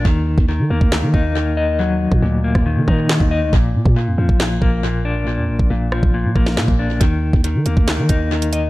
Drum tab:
HH |----------------|----------------|----------------|----------------|
CP |--------x-------|------------x---|--------x-------|------------x---|
SD |--------o-------|-------r----o---|--------o-------|------r----oo---|
BD |o--o---o--o-----|---o---o--o--o--|o--o---o--o-----|---o---o--o--o--|

HH |x---x-x-x-x--xx-|
CP |--------x-------|
SD |--------o-------|
BD |o--o---o--o-----|